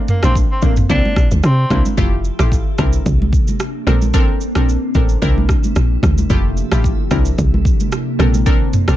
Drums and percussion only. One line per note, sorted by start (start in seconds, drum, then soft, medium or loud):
0.08 mid tom medium
0.08 shaker medium
0.23 cross-stick loud
0.23 shaker medium
0.35 kick medium
0.35 shaker medium
0.62 kick medium
0.62 low conga medium
0.62 shaker medium
0.76 mid tom medium
0.76 shaker medium
0.89 kick loud
0.89 low conga medium
0.89 shaker medium
1.05 high conga medium
1.16 kick loud
1.16 cross-stick loud
1.16 shaker medium
1.31 high conga medium
1.31 shaker medium
1.43 cross-stick loud
1.43 shaker medium
1.70 kick loud
1.70 cross-stick loud
1.70 high conga medium
1.70 low conga medium
1.70 shaker soft
1.85 high conga medium
1.85 shaker medium
1.98 kick loud
1.98 low conga medium
1.98 shaker medium
2.24 shaker medium
2.39 cross-stick loud
2.39 shaker medium
2.52 kick medium
2.52 shaker medium
2.78 kick medium
2.78 cross-stick loud
2.78 low conga medium
2.78 shaker medium
2.93 shaker medium
3.06 kick loud
3.06 low conga medium
3.06 shaker medium
3.22 high conga medium
3.33 kick loud
3.33 shaker medium
3.47 high conga medium
3.47 shaker medium
3.60 cross-stick loud
3.60 shaker medium
3.87 cross-stick loud
3.87 high conga medium
3.87 low conga medium
3.87 shaker soft
4.02 high conga medium
4.02 shaker medium
4.14 kick loud
4.14 low conga medium
4.14 shaker medium
4.41 shaker medium
4.55 cross-stick loud
4.55 shaker medium
4.69 shaker medium
4.95 kick medium
4.95 low conga medium
4.95 shaker medium
5.09 shaker medium
5.22 kick loud
5.22 low conga medium
5.22 shaker medium
5.38 high conga medium
5.49 kick loud
5.49 cross-stick loud
5.49 shaker medium
5.64 high conga medium
5.64 shaker medium
5.76 cross-stick loud
5.76 shaker medium
6.03 kick medium
6.03 cross-stick loud
6.03 high conga medium
6.03 low conga medium
6.03 shaker soft
6.18 high conga medium
6.18 shaker medium
6.30 kick loud
6.30 low conga medium
6.30 shaker medium
6.57 shaker medium
6.72 cross-stick loud
6.72 shaker medium
6.84 kick medium
6.84 shaker medium
7.11 kick medium
7.11 cross-stick loud
7.11 low conga medium
7.11 shaker medium
7.25 shaker medium
7.38 kick loud
7.38 low conga medium
7.38 shaker medium
7.54 high conga medium
7.65 kick loud
7.65 shaker medium
7.80 high conga medium
7.80 shaker medium
7.92 cross-stick loud
7.92 shaker medium
8.20 cross-stick loud
8.20 high conga medium
8.20 low conga medium
8.20 shaker soft
8.34 high conga medium
8.34 shaker medium
8.46 kick loud
8.46 low conga medium
8.46 shaker medium
8.73 mid tom medium
8.73 shaker medium
8.88 cross-stick loud
8.88 shaker medium